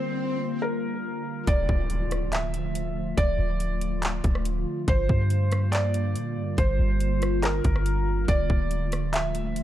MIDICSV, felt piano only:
0, 0, Header, 1, 2, 480
1, 0, Start_track
1, 0, Key_signature, -1, "minor"
1, 0, Tempo, 425532
1, 1663, Time_signature, 4, 2, 24, 8
1, 10864, End_track
2, 0, Start_track
2, 0, Title_t, "Felt piano"
2, 0, Program_c, 0, 0
2, 0, Note_on_c, 0, 72, 96
2, 656, Note_off_c, 0, 72, 0
2, 699, Note_on_c, 0, 70, 83
2, 1616, Note_off_c, 0, 70, 0
2, 1668, Note_on_c, 0, 74, 101
2, 2580, Note_off_c, 0, 74, 0
2, 2624, Note_on_c, 0, 76, 88
2, 3538, Note_off_c, 0, 76, 0
2, 3580, Note_on_c, 0, 74, 104
2, 4976, Note_off_c, 0, 74, 0
2, 5510, Note_on_c, 0, 72, 102
2, 6421, Note_off_c, 0, 72, 0
2, 6449, Note_on_c, 0, 74, 92
2, 7371, Note_off_c, 0, 74, 0
2, 7421, Note_on_c, 0, 72, 98
2, 8337, Note_off_c, 0, 72, 0
2, 8381, Note_on_c, 0, 70, 87
2, 9297, Note_off_c, 0, 70, 0
2, 9347, Note_on_c, 0, 74, 104
2, 10260, Note_off_c, 0, 74, 0
2, 10303, Note_on_c, 0, 76, 88
2, 10864, Note_off_c, 0, 76, 0
2, 10864, End_track
0, 0, End_of_file